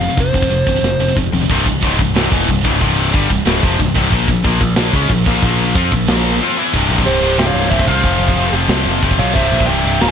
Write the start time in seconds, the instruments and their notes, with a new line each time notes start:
Already playing: lead electric guitar F5
0.01 distorted electric guitar F2 C3
0.09 distorted electric guitar F2 C3
0.17 picked electric bass F1, distorted electric guitar F2 C3, lead electric guitar C5, kick, china
0.33 picked electric bass F1, distorted electric guitar F2 C3, kick
0.42 distorted electric guitar F2 C3, kick
0.50 picked electric bass F1, distorted electric guitar F2 C3, china
0.67 picked electric bass C1, distorted electric guitar F2 C3, kick
0.75 distorted electric guitar F2 C3
0.83 picked electric bass F1, distorted electric guitar F2 C3, snare
1.00 picked electric bass F1, distorted electric guitar F2 C3
1.08 distorted electric guitar F2 C3
1.16 picked electric bass F1, distorted electric guitar F2 C3, kick, mid tom
1.32 picked electric bass F1, distorted electric guitar F2 C3, floor tom
1.41 distorted electric guitar F2 C3
1.50 picked electric bass C1, distorted electric guitar C2 G2 C3, kick, crash
1.66 picked electric bass C1, distorted electric guitar C2 G2, kick
1.83 picked electric bass C#1, distorted electric guitar C#2 G#2 C#3, kick, crash
1.99 picked electric bass C1, distorted electric guitar C2 G2, kick
2.16 picked electric bass C1, distorted electric guitar C2 G2 C3, snare, crash
2.32 picked electric bass E1, distorted electric guitar E2 B2 E3, kick
2.48 picked electric bass C1, distorted electric guitar C2 G2, kick, crash
2.64 picked electric bass C#1, distorted electric guitar C#2 G#2 C#3, kick
2.79 picked electric bass C1, distorted electric guitar C2 G2 C3, kick, crash
3.12 picked electric bass G1, distorted electric guitar G2 D3 G3, kick, crash
3.30 picked electric bass C1, distorted electric guitar C2 G2, kick
3.46 picked electric bass C#1, distorted electric guitar C#2 G#2 C#3, snare, crash
3.63 picked electric bass F1, distorted electric guitar F2 C3 F3, kick
3.79 picked electric bass C1, distorted electric guitar C2 G2, kick, crash
3.95 picked electric bass C1, distorted electric guitar C2 G2 C3, kick
4.12 picked electric bass A#1, distorted electric guitar A#2 F3 A#3, kick, crash
4.28 picked electric bass A#1, distorted electric guitar A#2 F3, kick
4.44 picked electric bass A#1, distorted electric guitar A#2 F3 A#3, kick, crash
4.61 picked electric bass A#1, distorted electric guitar A#2 F3, kick
4.76 picked electric bass A#1, distorted electric guitar A#2 F3 A#3, snare, crash
4.93 picked electric bass C#2, distorted electric guitar C#3 G#3 C#4, kick
5.09 picked electric bass A#1, distorted electric guitar A#2 F3, kick, crash
5.26 picked electric bass A#1, distorted electric guitar A#2 F3 A#3, kick
5.42 picked electric bass A#1, distorted electric guitar A#2 F3 A#3, kick, crash
5.46 distorted electric guitar A#3
5.75 picked electric bass F2, distorted electric guitar F3 C4 F4, kick, crash
5.92 picked electric bass A#1, distorted electric guitar A#2 F3, kick
6.08 picked electric bass A#1, distorted electric guitar A#2 F3 A#3, snare, crash
6.42 distorted electric guitar F3 C4 F4
6.57 distorted electric guitar E3 B3 E4
6.73 picked electric bass C1, distorted electric guitar C2 G2 C3, kick, crash, china
6.90 picked electric bass A#1
6.98 kick
7.06 picked electric bass C1, distorted electric guitar C2 G2 C3, lead electric guitar G4 C5, china
7.21 picked electric bass C1, distorted electric guitar C2 G2 C3
7.38 picked electric bass C1, distorted electric guitar C2 G2 C3, lead electric guitar E5 G5, snare, china
7.47 lead electric guitar C#5 F5
7.54 picked electric bass C1
7.70 picked electric bass C1, distorted electric guitar C2 G2 C3, lead electric guitar C5 E5, kick, china
7.79 lead electric guitar C5 E5, kick
7.87 picked electric bass C2, distorted electric guitar C2 G2 C3, lead electric guitar C5 F5, kick
8.03 picked electric bass F1, distorted electric guitar F2 C3 F3, kick, china
8.20 picked electric bass F1
8.28 kick
8.36 picked electric bass F1, distorted electric guitar F2 C3 F3, china
8.52 picked electric bass F1, distorted electric guitar F2 C3 F3
8.68 picked electric bass C2, distorted electric guitar F2 C3 F3, snare, china
8.85 picked electric bass F1
9.02 picked electric bass F1, distorted electric guitar F2 C3 F3, kick, china
9.11 kick
9.19 picked electric bass B1, distorted electric guitar F2 C3 F3, lead electric guitar C#5 F5, kick
9.34 picked electric bass C1, distorted electric guitar C2 G2 C3, lead electric guitar C5 E5, kick, china
9.43 lead electric guitar C5 E5
9.52 picked electric bass A#1
9.60 kick
9.67 picked electric bass C1, distorted electric guitar C2 G2 C3, lead electric guitar E5 G5, china
9.85 picked electric bass C1, distorted electric guitar C2 G2 C3
10.00 picked electric bass C#1, distorted electric guitar C#2 G#2 C#3, lead electric guitar F5 A#5, snare, china